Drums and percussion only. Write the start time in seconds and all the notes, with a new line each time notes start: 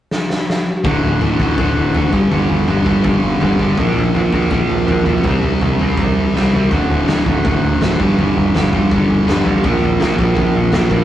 0.11 snare
0.30 snare
0.50 snare
0.84 kick, floor tom
1.03 floor tom
1.21 floor tom
1.40 kick, floor tom
1.58 kick, floor tom
1.76 floor tom
1.94 floor tom
2.13 kick, floor tom
2.32 floor tom
2.50 floor tom
2.68 floor tom
2.86 kick, floor tom
3.04 kick, floor tom
3.23 floor tom
3.41 floor tom
3.59 kick, floor tom
3.77 kick, floor tom
3.96 floor tom
4.15 floor tom
4.33 kick, floor tom
4.50 kick, floor tom
4.70 floor tom
4.88 floor tom
5.06 kick, floor tom
5.23 kick, floor tom
5.43 floor tom
5.61 floor tom
5.79 floor tom
5.97 kick, floor tom
6.16 floor tom
6.36 snare
6.53 floor tom
6.71 kick, floor tom
6.90 floor tom
7.08 snare, floor tom
7.26 kick, floor tom
7.45 kick, floor tom
7.64 floor tom
7.81 snare, floor tom
8.00 kick, floor tom
8.18 floor tom
8.37 floor tom
8.55 snare, floor tom
8.73 kick, floor tom
8.91 kick, floor tom
9.11 floor tom
9.28 snare, floor tom
9.46 kick, floor tom
9.64 kick, floor tom
9.84 floor tom
10.00 snare, floor tom
10.19 kick, floor tom
10.36 kick, floor tom
10.55 floor tom
10.72 snare, floor tom
10.91 kick, floor tom